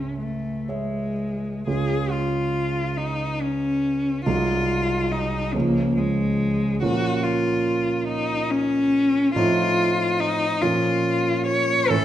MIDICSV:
0, 0, Header, 1, 3, 480
1, 0, Start_track
1, 0, Key_signature, -5, "major"
1, 0, Tempo, 991736
1, 810, Time_signature, 6, 3, 24, 8
1, 810, Tempo, 884956
1, 1290, Tempo, 849858
1, 6649, End_track
2, 0, Start_track
2, 0, Title_t, "Cello"
2, 0, Program_c, 0, 42
2, 0, Note_on_c, 0, 61, 48
2, 88, Note_off_c, 0, 61, 0
2, 91, Note_on_c, 0, 57, 40
2, 332, Note_on_c, 0, 56, 38
2, 340, Note_off_c, 0, 57, 0
2, 805, Note_off_c, 0, 56, 0
2, 808, Note_on_c, 0, 68, 58
2, 1047, Note_on_c, 0, 65, 56
2, 1056, Note_off_c, 0, 68, 0
2, 1527, Note_on_c, 0, 63, 57
2, 1536, Note_off_c, 0, 65, 0
2, 1771, Note_on_c, 0, 61, 67
2, 1780, Note_off_c, 0, 63, 0
2, 2243, Note_off_c, 0, 61, 0
2, 2246, Note_on_c, 0, 65, 69
2, 2734, Note_on_c, 0, 63, 59
2, 2742, Note_off_c, 0, 65, 0
2, 2976, Note_on_c, 0, 58, 68
2, 2984, Note_off_c, 0, 63, 0
2, 3216, Note_on_c, 0, 56, 61
2, 3225, Note_off_c, 0, 58, 0
2, 3694, Note_off_c, 0, 56, 0
2, 3697, Note_on_c, 0, 66, 68
2, 3932, Note_on_c, 0, 65, 58
2, 3940, Note_off_c, 0, 66, 0
2, 4404, Note_off_c, 0, 65, 0
2, 4408, Note_on_c, 0, 63, 74
2, 4647, Note_on_c, 0, 61, 79
2, 4656, Note_off_c, 0, 63, 0
2, 5121, Note_off_c, 0, 61, 0
2, 5125, Note_on_c, 0, 65, 80
2, 5607, Note_on_c, 0, 63, 83
2, 5615, Note_off_c, 0, 65, 0
2, 5840, Note_on_c, 0, 65, 76
2, 5848, Note_off_c, 0, 63, 0
2, 6319, Note_off_c, 0, 65, 0
2, 6323, Note_on_c, 0, 73, 83
2, 6562, Note_on_c, 0, 69, 91
2, 6570, Note_off_c, 0, 73, 0
2, 6649, Note_off_c, 0, 69, 0
2, 6649, End_track
3, 0, Start_track
3, 0, Title_t, "Grand piano"
3, 0, Program_c, 1, 0
3, 0, Control_c, 1, 64, 127
3, 0, Note_on_c, 1, 37, 35
3, 0, Note_on_c, 1, 68, 26
3, 0, Note_on_c, 1, 73, 23
3, 0, Note_on_c, 1, 76, 29
3, 313, Note_off_c, 1, 68, 0
3, 314, Note_off_c, 1, 73, 0
3, 315, Note_off_c, 1, 76, 0
3, 330, Note_on_c, 1, 68, 22
3, 333, Note_on_c, 1, 73, 24
3, 336, Note_on_c, 1, 76, 24
3, 790, Note_off_c, 1, 68, 0
3, 792, Note_off_c, 1, 73, 0
3, 793, Note_off_c, 1, 76, 0
3, 808, Note_off_c, 1, 37, 0
3, 808, Note_on_c, 1, 37, 36
3, 808, Note_on_c, 1, 56, 31
3, 809, Note_on_c, 1, 61, 31
3, 809, Note_on_c, 1, 65, 32
3, 818, Control_c, 1, 64, 0
3, 901, Control_c, 1, 64, 127
3, 2228, Note_off_c, 1, 56, 0
3, 2229, Note_off_c, 1, 37, 0
3, 2229, Note_off_c, 1, 61, 0
3, 2229, Note_off_c, 1, 65, 0
3, 2252, Note_on_c, 1, 36, 47
3, 2252, Note_on_c, 1, 56, 36
3, 2253, Note_on_c, 1, 54, 34
3, 2253, Note_on_c, 1, 63, 34
3, 2261, Control_c, 1, 64, 0
3, 2349, Control_c, 1, 64, 127
3, 2957, Note_off_c, 1, 36, 0
3, 2957, Note_off_c, 1, 54, 0
3, 2957, Note_off_c, 1, 56, 0
3, 2958, Note_off_c, 1, 63, 0
3, 2977, Note_on_c, 1, 56, 33
3, 2977, Note_on_c, 1, 61, 36
3, 2978, Note_on_c, 1, 53, 38
3, 2979, Note_on_c, 1, 37, 39
3, 2987, Control_c, 1, 64, 0
3, 3092, Control_c, 1, 64, 127
3, 3676, Note_off_c, 1, 61, 0
3, 3677, Note_off_c, 1, 37, 0
3, 3677, Note_off_c, 1, 53, 0
3, 3677, Note_off_c, 1, 56, 0
3, 3698, Note_on_c, 1, 53, 37
3, 3698, Note_on_c, 1, 58, 38
3, 3698, Note_on_c, 1, 61, 40
3, 3699, Note_on_c, 1, 46, 47
3, 3707, Control_c, 1, 64, 0
3, 3797, Control_c, 1, 64, 127
3, 5110, Note_off_c, 1, 53, 0
3, 5110, Note_off_c, 1, 58, 0
3, 5110, Note_off_c, 1, 61, 0
3, 5111, Note_off_c, 1, 46, 0
3, 5131, Note_on_c, 1, 45, 51
3, 5132, Note_on_c, 1, 60, 43
3, 5133, Note_on_c, 1, 53, 44
3, 5133, Note_on_c, 1, 63, 45
3, 5142, Control_c, 1, 64, 0
3, 5246, Control_c, 1, 64, 127
3, 5827, Note_off_c, 1, 45, 0
3, 5827, Note_off_c, 1, 53, 0
3, 5827, Note_off_c, 1, 60, 0
3, 5827, Note_off_c, 1, 63, 0
3, 5844, Note_on_c, 1, 61, 44
3, 5845, Note_on_c, 1, 53, 44
3, 5846, Note_on_c, 1, 46, 48
3, 5857, Control_c, 1, 64, 0
3, 5938, Control_c, 1, 64, 127
3, 6544, Note_off_c, 1, 46, 0
3, 6544, Note_off_c, 1, 53, 0
3, 6544, Note_off_c, 1, 61, 0
3, 6564, Note_on_c, 1, 52, 47
3, 6564, Note_on_c, 1, 61, 53
3, 6565, Note_on_c, 1, 57, 49
3, 6567, Note_on_c, 1, 45, 54
3, 6576, Control_c, 1, 64, 0
3, 6649, Note_off_c, 1, 45, 0
3, 6649, Note_off_c, 1, 52, 0
3, 6649, Note_off_c, 1, 57, 0
3, 6649, Note_off_c, 1, 61, 0
3, 6649, End_track
0, 0, End_of_file